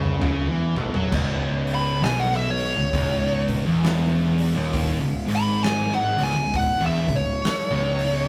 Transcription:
0.00 0.20 C#2 medium
0.00 0.18 C#3 loud
0.00 high tom medium
0.19 0.46 C#3 loud
0.19 mid tom loud
0.23 0.48 C#2 medium
0.48 0.75 E2 loud
0.48 0.74 E3 loud
0.75 0.94 B1 medium
0.75 0.93 B2 loud
0.75 floor tom loud
0.94 1.12 F#2 medium
0.94 1.11 F#3 loud
0.94 floor tom medium
1.11 1.99 C#1 loud
1.11 2.01 C#2 loud
1.11 kick loud
1.11 crash loud
1.67 open hi-hat medium
1.75 2.03 B5 medium
2.02 2.72 B1 medium
2.02 2.74 B2 loud
2.02 2.21 G#5 medium
2.02 snare loud
2.02 open hi-hat medium
2.19 2.32 F#5 medium
2.32 snare soft
2.36 2.50 E5 medium
2.50 3.42 C#5 loud
2.57 open hi-hat medium
2.75 2.92 C#1 medium
2.75 2.91 C#2 medium
2.93 3.62 C#1 loud
2.93 3.64 C#2 loud
2.93 kick loud
2.93 open hi-hat medium
3.48 kick medium
3.48 open hi-hat medium
3.65 4.52 E1 medium
3.65 4.55 E2 loud
3.83 snare loud
3.83 open hi-hat medium
4.38 open hi-hat medium
4.56 4.98 D#1 medium
4.56 5.00 D#2 loud
4.73 kick loud
4.73 open hi-hat loud
5.00 5.27 C#1 medium
5.00 5.26 C#2 medium
5.26 6.15 G#1 medium
5.26 6.16 G#2 loud
5.26 open hi-hat medium
5.36 5.63 B5 loud
5.63 5.93 G#5 loud
5.63 snare loud
5.63 open hi-hat medium
5.92 6.24 F#5 loud
5.92 snare soft
6.17 6.36 C#1 loud
6.17 6.33 C#2 loud
6.17 open hi-hat medium
6.23 6.53 G#5 medium
6.35 6.78 C#1 medium
6.35 6.70 C#2 medium
6.53 6.84 F#5 loud
6.53 kick loud
6.53 open hi-hat medium
6.79 7.07 E1 loud
6.79 7.06 E2 loud
6.86 7.14 E5 medium
7.08 7.42 C#1 medium
7.08 7.37 C#2 medium
7.08 kick medium
7.08 open hi-hat medium
7.15 8.28 C#5 loud
7.44 snare loud
7.44 open hi-hat medium
7.71 8.28 C#1 loud
7.71 8.28 C#2 loud
7.99 open hi-hat medium

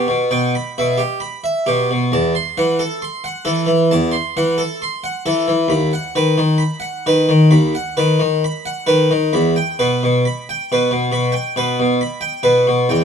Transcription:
0.08 0.30 B2 medium
0.31 0.54 B2 soft
0.31 0.54 G5 medium
0.55 0.77 B5 medium
0.78 1.00 B2 soft
0.78 1.00 E5 medium
0.98 1.21 G4 soft
1.20 1.43 B5 medium
1.44 1.67 E5 medium
1.66 1.90 B2 soft
1.66 1.89 G4 medium
1.91 2.12 B2 soft
2.12 2.33 E2 medium
2.12 2.35 A5 medium
2.35 2.58 C6 medium
2.58 2.80 E3 medium
2.58 2.80 F#5 medium
2.79 3.03 A4 medium
3.02 3.26 C6 soft
3.24 3.48 F#5 medium
3.45 3.65 E3 soft
3.45 3.69 A4 medium
3.67 3.91 E3 medium
3.91 4.13 E2 medium
3.91 4.15 A5 medium
4.12 4.36 C6 medium
4.37 4.60 E3 medium
4.37 4.60 F#5 medium
4.58 4.82 A4 medium
4.82 5.05 C6 medium
5.04 5.27 F#5 medium
5.26 5.47 E3 soft
5.26 5.50 A4 medium
5.48 5.70 E3 medium
5.68 5.91 D#2 medium
5.68 5.94 B5 medium
5.93 6.16 F#5 medium
6.15 6.36 D#3 soft
6.15 6.39 B4 medium
6.38 6.61 D#3 medium
6.58 6.83 B5 medium
6.80 7.05 F#5 medium
7.06 7.28 D#3 medium
7.06 7.30 B4 medium
7.29 7.52 D#3 medium
7.51 7.73 D#2 medium
7.51 7.75 B5 medium
7.75 7.98 F#5 medium
7.97 8.18 D#3 medium
7.97 8.20 B4 medium
8.19 8.43 D#3 medium
8.44 8.67 B5 medium
8.66 8.89 F#5 medium
8.87 9.10 D#3 soft
8.87 9.11 B4 medium
9.11 9.33 D#3 medium
9.33 9.54 E2 medium
9.33 9.56 B5 medium
9.56 9.79 G5 medium
9.79 10.01 B2 medium
9.79 10.02 B4 medium
10.03 10.24 B2 medium
10.25 10.46 B5 medium
10.49 10.69 G5 medium
10.72 10.90 B2 medium
10.72 10.92 B4 medium
10.91 11.11 B2 medium
11.12 11.33 B2 medium
11.12 11.33 B5 medium
11.32 11.54 G5 medium
11.56 11.77 B2 medium
11.56 11.78 B4 medium
11.80 12.00 B2 medium
12.01 12.22 B5 medium
12.21 12.42 G5 medium
12.43 12.65 B2 soft
12.43 12.65 B4 medium
12.67 12.87 B2 medium
12.89 13.04 E2 medium
12.89 13.04 G5 medium

